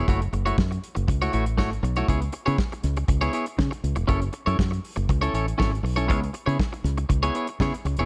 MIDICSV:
0, 0, Header, 1, 5, 480
1, 0, Start_track
1, 0, Key_signature, 4, "minor"
1, 0, Tempo, 501253
1, 77, Time_signature, 4, 2, 24, 8
1, 7712, End_track
2, 0, Start_track
2, 0, Title_t, "Clean electric guitar"
2, 0, Program_c, 0, 27
2, 74, Note_on_c, 0, 57, 81
2, 83, Note_on_c, 0, 64, 86
2, 86, Note_on_c, 0, 66, 78
2, 93, Note_on_c, 0, 73, 79
2, 187, Note_off_c, 0, 73, 0
2, 196, Note_off_c, 0, 66, 0
2, 200, Note_off_c, 0, 64, 0
2, 211, Note_off_c, 0, 57, 0
2, 437, Note_on_c, 0, 73, 70
2, 442, Note_on_c, 0, 66, 58
2, 447, Note_on_c, 0, 64, 60
2, 454, Note_on_c, 0, 57, 53
2, 535, Note_off_c, 0, 73, 0
2, 536, Note_off_c, 0, 57, 0
2, 538, Note_off_c, 0, 66, 0
2, 540, Note_off_c, 0, 64, 0
2, 1165, Note_on_c, 0, 73, 89
2, 1170, Note_on_c, 0, 66, 83
2, 1174, Note_on_c, 0, 64, 65
2, 1181, Note_on_c, 0, 57, 72
2, 1256, Note_off_c, 0, 57, 0
2, 1262, Note_off_c, 0, 64, 0
2, 1267, Note_off_c, 0, 66, 0
2, 1267, Note_on_c, 0, 57, 62
2, 1268, Note_off_c, 0, 73, 0
2, 1274, Note_on_c, 0, 64, 70
2, 1278, Note_on_c, 0, 66, 69
2, 1280, Note_on_c, 0, 73, 67
2, 1378, Note_off_c, 0, 57, 0
2, 1382, Note_off_c, 0, 64, 0
2, 1384, Note_off_c, 0, 66, 0
2, 1385, Note_off_c, 0, 73, 0
2, 1508, Note_on_c, 0, 57, 85
2, 1515, Note_on_c, 0, 64, 83
2, 1517, Note_on_c, 0, 66, 86
2, 1520, Note_on_c, 0, 73, 95
2, 1628, Note_off_c, 0, 73, 0
2, 1632, Note_off_c, 0, 66, 0
2, 1637, Note_off_c, 0, 64, 0
2, 1647, Note_off_c, 0, 57, 0
2, 1883, Note_on_c, 0, 73, 67
2, 1887, Note_on_c, 0, 66, 56
2, 1893, Note_on_c, 0, 64, 59
2, 1899, Note_on_c, 0, 57, 52
2, 1977, Note_off_c, 0, 73, 0
2, 1980, Note_off_c, 0, 66, 0
2, 1983, Note_off_c, 0, 64, 0
2, 1985, Note_off_c, 0, 57, 0
2, 1994, Note_on_c, 0, 59, 66
2, 1999, Note_on_c, 0, 64, 80
2, 2005, Note_on_c, 0, 68, 75
2, 2008, Note_on_c, 0, 73, 76
2, 2106, Note_off_c, 0, 73, 0
2, 2112, Note_off_c, 0, 68, 0
2, 2113, Note_off_c, 0, 64, 0
2, 2130, Note_off_c, 0, 59, 0
2, 2354, Note_on_c, 0, 73, 63
2, 2357, Note_on_c, 0, 68, 63
2, 2364, Note_on_c, 0, 64, 52
2, 2366, Note_on_c, 0, 59, 54
2, 2453, Note_off_c, 0, 73, 0
2, 2454, Note_off_c, 0, 68, 0
2, 2458, Note_off_c, 0, 64, 0
2, 2459, Note_off_c, 0, 59, 0
2, 3077, Note_on_c, 0, 73, 86
2, 3080, Note_on_c, 0, 68, 75
2, 3085, Note_on_c, 0, 64, 72
2, 3087, Note_on_c, 0, 59, 75
2, 3176, Note_off_c, 0, 59, 0
2, 3178, Note_off_c, 0, 64, 0
2, 3187, Note_off_c, 0, 68, 0
2, 3187, Note_on_c, 0, 59, 64
2, 3189, Note_on_c, 0, 64, 69
2, 3191, Note_off_c, 0, 73, 0
2, 3198, Note_on_c, 0, 68, 69
2, 3203, Note_on_c, 0, 73, 75
2, 3298, Note_off_c, 0, 59, 0
2, 3299, Note_off_c, 0, 64, 0
2, 3303, Note_off_c, 0, 68, 0
2, 3306, Note_off_c, 0, 73, 0
2, 3901, Note_on_c, 0, 61, 76
2, 3908, Note_on_c, 0, 64, 71
2, 3913, Note_on_c, 0, 69, 74
2, 3918, Note_on_c, 0, 73, 75
2, 4017, Note_off_c, 0, 73, 0
2, 4024, Note_off_c, 0, 64, 0
2, 4025, Note_off_c, 0, 69, 0
2, 4044, Note_off_c, 0, 61, 0
2, 4272, Note_on_c, 0, 73, 61
2, 4279, Note_on_c, 0, 69, 55
2, 4282, Note_on_c, 0, 64, 60
2, 4289, Note_on_c, 0, 61, 51
2, 4371, Note_off_c, 0, 73, 0
2, 4375, Note_off_c, 0, 61, 0
2, 4375, Note_off_c, 0, 69, 0
2, 4377, Note_off_c, 0, 64, 0
2, 4994, Note_on_c, 0, 73, 82
2, 5002, Note_on_c, 0, 69, 83
2, 5008, Note_on_c, 0, 64, 67
2, 5010, Note_on_c, 0, 61, 62
2, 5101, Note_off_c, 0, 61, 0
2, 5103, Note_off_c, 0, 64, 0
2, 5111, Note_off_c, 0, 73, 0
2, 5112, Note_off_c, 0, 69, 0
2, 5112, Note_on_c, 0, 61, 65
2, 5114, Note_on_c, 0, 64, 61
2, 5123, Note_on_c, 0, 69, 73
2, 5123, Note_on_c, 0, 73, 73
2, 5221, Note_off_c, 0, 61, 0
2, 5222, Note_off_c, 0, 64, 0
2, 5226, Note_off_c, 0, 69, 0
2, 5226, Note_off_c, 0, 73, 0
2, 5342, Note_on_c, 0, 61, 70
2, 5348, Note_on_c, 0, 64, 77
2, 5351, Note_on_c, 0, 69, 81
2, 5360, Note_on_c, 0, 73, 92
2, 5463, Note_off_c, 0, 73, 0
2, 5471, Note_off_c, 0, 69, 0
2, 5477, Note_off_c, 0, 64, 0
2, 5484, Note_off_c, 0, 61, 0
2, 5709, Note_on_c, 0, 73, 68
2, 5714, Note_on_c, 0, 69, 57
2, 5719, Note_on_c, 0, 64, 63
2, 5723, Note_on_c, 0, 61, 56
2, 5811, Note_off_c, 0, 73, 0
2, 5813, Note_off_c, 0, 69, 0
2, 5815, Note_off_c, 0, 64, 0
2, 5816, Note_off_c, 0, 61, 0
2, 5820, Note_on_c, 0, 59, 84
2, 5825, Note_on_c, 0, 64, 81
2, 5827, Note_on_c, 0, 68, 86
2, 5831, Note_on_c, 0, 73, 87
2, 5937, Note_off_c, 0, 73, 0
2, 5940, Note_off_c, 0, 68, 0
2, 5945, Note_off_c, 0, 64, 0
2, 5964, Note_off_c, 0, 59, 0
2, 6189, Note_on_c, 0, 73, 65
2, 6197, Note_on_c, 0, 68, 58
2, 6198, Note_on_c, 0, 64, 54
2, 6203, Note_on_c, 0, 59, 46
2, 6291, Note_off_c, 0, 73, 0
2, 6295, Note_off_c, 0, 68, 0
2, 6296, Note_off_c, 0, 64, 0
2, 6298, Note_off_c, 0, 59, 0
2, 6921, Note_on_c, 0, 73, 86
2, 6924, Note_on_c, 0, 68, 73
2, 6931, Note_on_c, 0, 64, 65
2, 6932, Note_on_c, 0, 59, 62
2, 7021, Note_off_c, 0, 59, 0
2, 7029, Note_off_c, 0, 64, 0
2, 7030, Note_off_c, 0, 68, 0
2, 7033, Note_on_c, 0, 59, 57
2, 7039, Note_off_c, 0, 73, 0
2, 7041, Note_on_c, 0, 64, 57
2, 7042, Note_on_c, 0, 68, 63
2, 7051, Note_on_c, 0, 73, 71
2, 7142, Note_off_c, 0, 59, 0
2, 7146, Note_off_c, 0, 64, 0
2, 7147, Note_off_c, 0, 68, 0
2, 7151, Note_off_c, 0, 73, 0
2, 7282, Note_on_c, 0, 59, 77
2, 7289, Note_on_c, 0, 64, 73
2, 7294, Note_on_c, 0, 68, 88
2, 7298, Note_on_c, 0, 73, 84
2, 7400, Note_off_c, 0, 73, 0
2, 7410, Note_off_c, 0, 68, 0
2, 7416, Note_off_c, 0, 59, 0
2, 7417, Note_off_c, 0, 64, 0
2, 7652, Note_on_c, 0, 73, 65
2, 7657, Note_on_c, 0, 68, 61
2, 7663, Note_on_c, 0, 64, 63
2, 7665, Note_on_c, 0, 59, 57
2, 7712, Note_off_c, 0, 59, 0
2, 7712, Note_off_c, 0, 64, 0
2, 7712, Note_off_c, 0, 68, 0
2, 7712, Note_off_c, 0, 73, 0
2, 7712, End_track
3, 0, Start_track
3, 0, Title_t, "Fingered electric bass"
3, 0, Program_c, 1, 33
3, 78, Note_on_c, 1, 30, 89
3, 259, Note_off_c, 1, 30, 0
3, 312, Note_on_c, 1, 30, 93
3, 495, Note_off_c, 1, 30, 0
3, 559, Note_on_c, 1, 42, 96
3, 739, Note_off_c, 1, 42, 0
3, 926, Note_on_c, 1, 30, 79
3, 1010, Note_off_c, 1, 30, 0
3, 1038, Note_on_c, 1, 37, 88
3, 1218, Note_off_c, 1, 37, 0
3, 1280, Note_on_c, 1, 33, 96
3, 1520, Note_off_c, 1, 33, 0
3, 1520, Note_on_c, 1, 32, 89
3, 1699, Note_off_c, 1, 32, 0
3, 1752, Note_on_c, 1, 35, 93
3, 1934, Note_off_c, 1, 35, 0
3, 1999, Note_on_c, 1, 37, 92
3, 2179, Note_off_c, 1, 37, 0
3, 2371, Note_on_c, 1, 49, 93
3, 2452, Note_off_c, 1, 49, 0
3, 2718, Note_on_c, 1, 37, 88
3, 2898, Note_off_c, 1, 37, 0
3, 2957, Note_on_c, 1, 37, 85
3, 3137, Note_off_c, 1, 37, 0
3, 3434, Note_on_c, 1, 49, 102
3, 3530, Note_off_c, 1, 49, 0
3, 3673, Note_on_c, 1, 37, 86
3, 3769, Note_off_c, 1, 37, 0
3, 3799, Note_on_c, 1, 28, 81
3, 3884, Note_off_c, 1, 28, 0
3, 3916, Note_on_c, 1, 30, 100
3, 4096, Note_off_c, 1, 30, 0
3, 4281, Note_on_c, 1, 42, 96
3, 4366, Note_off_c, 1, 42, 0
3, 4396, Note_on_c, 1, 42, 88
3, 4576, Note_off_c, 1, 42, 0
3, 4760, Note_on_c, 1, 30, 78
3, 4845, Note_off_c, 1, 30, 0
3, 4878, Note_on_c, 1, 37, 94
3, 5058, Note_off_c, 1, 37, 0
3, 5109, Note_on_c, 1, 33, 82
3, 5292, Note_off_c, 1, 33, 0
3, 5359, Note_on_c, 1, 32, 94
3, 5539, Note_off_c, 1, 32, 0
3, 5583, Note_on_c, 1, 35, 89
3, 5843, Note_off_c, 1, 35, 0
3, 5843, Note_on_c, 1, 37, 90
3, 6022, Note_off_c, 1, 37, 0
3, 6198, Note_on_c, 1, 49, 92
3, 6285, Note_off_c, 1, 49, 0
3, 6553, Note_on_c, 1, 37, 96
3, 6736, Note_off_c, 1, 37, 0
3, 6798, Note_on_c, 1, 37, 85
3, 6979, Note_off_c, 1, 37, 0
3, 7281, Note_on_c, 1, 49, 102
3, 7376, Note_off_c, 1, 49, 0
3, 7516, Note_on_c, 1, 37, 88
3, 7613, Note_off_c, 1, 37, 0
3, 7645, Note_on_c, 1, 28, 88
3, 7712, Note_off_c, 1, 28, 0
3, 7712, End_track
4, 0, Start_track
4, 0, Title_t, "Muted clean electric guitar strokes"
4, 199, Note_on_c, 9, 29, 43
4, 295, Note_off_c, 9, 29, 0
4, 315, Note_on_c, 9, 29, 37
4, 411, Note_off_c, 9, 29, 0
4, 548, Note_on_c, 9, 29, 44
4, 644, Note_off_c, 9, 29, 0
4, 679, Note_on_c, 9, 29, 42
4, 774, Note_off_c, 9, 29, 0
4, 911, Note_on_c, 9, 29, 42
4, 1007, Note_off_c, 9, 29, 0
4, 1034, Note_on_c, 9, 29, 29
4, 1130, Note_off_c, 9, 29, 0
4, 1398, Note_on_c, 9, 29, 44
4, 1494, Note_off_c, 9, 29, 0
4, 1639, Note_on_c, 9, 29, 49
4, 1735, Note_off_c, 9, 29, 0
4, 1752, Note_on_c, 9, 29, 45
4, 1848, Note_off_c, 9, 29, 0
4, 2118, Note_on_c, 9, 29, 45
4, 2214, Note_off_c, 9, 29, 0
4, 2229, Note_on_c, 9, 29, 40
4, 2324, Note_off_c, 9, 29, 0
4, 2608, Note_on_c, 9, 29, 40
4, 2704, Note_off_c, 9, 29, 0
4, 2847, Note_on_c, 9, 29, 46
4, 2943, Note_off_c, 9, 29, 0
4, 2952, Note_on_c, 9, 29, 32
4, 3048, Note_off_c, 9, 29, 0
4, 3323, Note_on_c, 9, 29, 45
4, 3419, Note_off_c, 9, 29, 0
4, 3430, Note_on_c, 9, 29, 34
4, 3526, Note_off_c, 9, 29, 0
4, 3553, Note_on_c, 9, 29, 49
4, 3648, Note_off_c, 9, 29, 0
4, 3790, Note_on_c, 9, 29, 52
4, 3886, Note_off_c, 9, 29, 0
4, 4029, Note_on_c, 9, 29, 37
4, 4124, Note_off_c, 9, 29, 0
4, 4143, Note_on_c, 9, 29, 36
4, 4239, Note_off_c, 9, 29, 0
4, 4510, Note_on_c, 9, 29, 42
4, 4606, Note_off_c, 9, 29, 0
4, 4751, Note_on_c, 9, 29, 41
4, 4847, Note_off_c, 9, 29, 0
4, 4878, Note_on_c, 9, 29, 37
4, 4974, Note_off_c, 9, 29, 0
4, 5241, Note_on_c, 9, 29, 38
4, 5337, Note_off_c, 9, 29, 0
4, 5475, Note_on_c, 9, 29, 47
4, 5570, Note_off_c, 9, 29, 0
4, 5590, Note_on_c, 9, 29, 37
4, 5685, Note_off_c, 9, 29, 0
4, 5949, Note_on_c, 9, 29, 47
4, 6044, Note_off_c, 9, 29, 0
4, 6066, Note_on_c, 9, 29, 41
4, 6161, Note_off_c, 9, 29, 0
4, 6315, Note_on_c, 9, 29, 47
4, 6411, Note_off_c, 9, 29, 0
4, 6442, Note_on_c, 9, 29, 46
4, 6537, Note_off_c, 9, 29, 0
4, 6681, Note_on_c, 9, 29, 40
4, 6776, Note_off_c, 9, 29, 0
4, 6791, Note_on_c, 9, 29, 37
4, 6887, Note_off_c, 9, 29, 0
4, 7170, Note_on_c, 9, 29, 51
4, 7266, Note_off_c, 9, 29, 0
4, 7412, Note_on_c, 9, 29, 44
4, 7508, Note_off_c, 9, 29, 0
4, 7523, Note_on_c, 9, 29, 54
4, 7619, Note_off_c, 9, 29, 0
4, 7712, End_track
5, 0, Start_track
5, 0, Title_t, "Drums"
5, 77, Note_on_c, 9, 36, 106
5, 80, Note_on_c, 9, 42, 71
5, 172, Note_off_c, 9, 36, 0
5, 176, Note_off_c, 9, 42, 0
5, 208, Note_on_c, 9, 42, 44
5, 304, Note_off_c, 9, 42, 0
5, 319, Note_on_c, 9, 42, 57
5, 415, Note_off_c, 9, 42, 0
5, 447, Note_on_c, 9, 42, 42
5, 542, Note_off_c, 9, 42, 0
5, 555, Note_on_c, 9, 36, 115
5, 560, Note_on_c, 9, 38, 116
5, 651, Note_off_c, 9, 36, 0
5, 656, Note_off_c, 9, 38, 0
5, 691, Note_on_c, 9, 42, 46
5, 787, Note_off_c, 9, 42, 0
5, 800, Note_on_c, 9, 42, 69
5, 896, Note_off_c, 9, 42, 0
5, 923, Note_on_c, 9, 42, 48
5, 1018, Note_off_c, 9, 42, 0
5, 1037, Note_on_c, 9, 36, 110
5, 1047, Note_on_c, 9, 42, 87
5, 1133, Note_off_c, 9, 36, 0
5, 1143, Note_off_c, 9, 42, 0
5, 1168, Note_on_c, 9, 42, 47
5, 1264, Note_off_c, 9, 42, 0
5, 1274, Note_on_c, 9, 42, 70
5, 1370, Note_off_c, 9, 42, 0
5, 1400, Note_on_c, 9, 42, 57
5, 1496, Note_off_c, 9, 42, 0
5, 1517, Note_on_c, 9, 36, 102
5, 1519, Note_on_c, 9, 38, 114
5, 1613, Note_off_c, 9, 36, 0
5, 1615, Note_off_c, 9, 38, 0
5, 1656, Note_on_c, 9, 42, 47
5, 1752, Note_off_c, 9, 42, 0
5, 1766, Note_on_c, 9, 42, 61
5, 1862, Note_off_c, 9, 42, 0
5, 1874, Note_on_c, 9, 42, 42
5, 1970, Note_off_c, 9, 42, 0
5, 1996, Note_on_c, 9, 36, 99
5, 2001, Note_on_c, 9, 42, 72
5, 2092, Note_off_c, 9, 36, 0
5, 2097, Note_off_c, 9, 42, 0
5, 2123, Note_on_c, 9, 42, 50
5, 2218, Note_off_c, 9, 42, 0
5, 2226, Note_on_c, 9, 42, 57
5, 2321, Note_off_c, 9, 42, 0
5, 2366, Note_on_c, 9, 42, 38
5, 2462, Note_off_c, 9, 42, 0
5, 2475, Note_on_c, 9, 36, 107
5, 2477, Note_on_c, 9, 38, 119
5, 2570, Note_off_c, 9, 36, 0
5, 2573, Note_off_c, 9, 38, 0
5, 2608, Note_on_c, 9, 42, 44
5, 2703, Note_off_c, 9, 42, 0
5, 2712, Note_on_c, 9, 38, 31
5, 2715, Note_on_c, 9, 42, 67
5, 2808, Note_off_c, 9, 38, 0
5, 2811, Note_off_c, 9, 42, 0
5, 2839, Note_on_c, 9, 42, 50
5, 2935, Note_off_c, 9, 42, 0
5, 2953, Note_on_c, 9, 36, 102
5, 2956, Note_on_c, 9, 42, 84
5, 3049, Note_off_c, 9, 36, 0
5, 3052, Note_off_c, 9, 42, 0
5, 3084, Note_on_c, 9, 42, 46
5, 3180, Note_off_c, 9, 42, 0
5, 3189, Note_on_c, 9, 42, 71
5, 3285, Note_off_c, 9, 42, 0
5, 3313, Note_on_c, 9, 42, 51
5, 3409, Note_off_c, 9, 42, 0
5, 3435, Note_on_c, 9, 36, 99
5, 3438, Note_on_c, 9, 38, 97
5, 3530, Note_off_c, 9, 36, 0
5, 3534, Note_off_c, 9, 38, 0
5, 3568, Note_on_c, 9, 42, 45
5, 3664, Note_off_c, 9, 42, 0
5, 3679, Note_on_c, 9, 42, 63
5, 3774, Note_off_c, 9, 42, 0
5, 3790, Note_on_c, 9, 42, 49
5, 3886, Note_off_c, 9, 42, 0
5, 3913, Note_on_c, 9, 36, 105
5, 3914, Note_on_c, 9, 42, 69
5, 4009, Note_off_c, 9, 36, 0
5, 4009, Note_off_c, 9, 42, 0
5, 4037, Note_on_c, 9, 42, 49
5, 4133, Note_off_c, 9, 42, 0
5, 4144, Note_on_c, 9, 42, 61
5, 4239, Note_off_c, 9, 42, 0
5, 4283, Note_on_c, 9, 42, 38
5, 4379, Note_off_c, 9, 42, 0
5, 4394, Note_on_c, 9, 36, 104
5, 4402, Note_on_c, 9, 38, 124
5, 4490, Note_off_c, 9, 36, 0
5, 4497, Note_off_c, 9, 38, 0
5, 4533, Note_on_c, 9, 42, 46
5, 4629, Note_off_c, 9, 42, 0
5, 4640, Note_on_c, 9, 46, 69
5, 4735, Note_off_c, 9, 46, 0
5, 4761, Note_on_c, 9, 42, 51
5, 4856, Note_off_c, 9, 42, 0
5, 4876, Note_on_c, 9, 36, 99
5, 4884, Note_on_c, 9, 42, 80
5, 4972, Note_off_c, 9, 36, 0
5, 4980, Note_off_c, 9, 42, 0
5, 5007, Note_on_c, 9, 42, 46
5, 5103, Note_off_c, 9, 42, 0
5, 5119, Note_on_c, 9, 42, 64
5, 5215, Note_off_c, 9, 42, 0
5, 5247, Note_on_c, 9, 42, 51
5, 5343, Note_off_c, 9, 42, 0
5, 5359, Note_on_c, 9, 36, 102
5, 5369, Note_on_c, 9, 38, 99
5, 5455, Note_off_c, 9, 36, 0
5, 5465, Note_off_c, 9, 38, 0
5, 5506, Note_on_c, 9, 42, 43
5, 5602, Note_off_c, 9, 42, 0
5, 5607, Note_on_c, 9, 46, 74
5, 5703, Note_off_c, 9, 46, 0
5, 5723, Note_on_c, 9, 42, 44
5, 5819, Note_off_c, 9, 42, 0
5, 5840, Note_on_c, 9, 36, 106
5, 5843, Note_on_c, 9, 42, 70
5, 5936, Note_off_c, 9, 36, 0
5, 5939, Note_off_c, 9, 42, 0
5, 5970, Note_on_c, 9, 42, 51
5, 6066, Note_off_c, 9, 42, 0
5, 6071, Note_on_c, 9, 42, 62
5, 6167, Note_off_c, 9, 42, 0
5, 6210, Note_on_c, 9, 42, 42
5, 6305, Note_off_c, 9, 42, 0
5, 6315, Note_on_c, 9, 36, 102
5, 6319, Note_on_c, 9, 38, 116
5, 6411, Note_off_c, 9, 36, 0
5, 6415, Note_off_c, 9, 38, 0
5, 6450, Note_on_c, 9, 42, 44
5, 6546, Note_off_c, 9, 42, 0
5, 6560, Note_on_c, 9, 38, 33
5, 6563, Note_on_c, 9, 42, 68
5, 6656, Note_off_c, 9, 38, 0
5, 6659, Note_off_c, 9, 42, 0
5, 6680, Note_on_c, 9, 42, 50
5, 6776, Note_off_c, 9, 42, 0
5, 6796, Note_on_c, 9, 36, 103
5, 6800, Note_on_c, 9, 42, 82
5, 6892, Note_off_c, 9, 36, 0
5, 6895, Note_off_c, 9, 42, 0
5, 6929, Note_on_c, 9, 42, 47
5, 7024, Note_off_c, 9, 42, 0
5, 7036, Note_on_c, 9, 42, 64
5, 7132, Note_off_c, 9, 42, 0
5, 7156, Note_on_c, 9, 42, 51
5, 7252, Note_off_c, 9, 42, 0
5, 7277, Note_on_c, 9, 36, 98
5, 7280, Note_on_c, 9, 38, 108
5, 7373, Note_off_c, 9, 36, 0
5, 7376, Note_off_c, 9, 38, 0
5, 7415, Note_on_c, 9, 42, 49
5, 7511, Note_off_c, 9, 42, 0
5, 7521, Note_on_c, 9, 42, 71
5, 7617, Note_off_c, 9, 42, 0
5, 7628, Note_on_c, 9, 42, 46
5, 7712, Note_off_c, 9, 42, 0
5, 7712, End_track
0, 0, End_of_file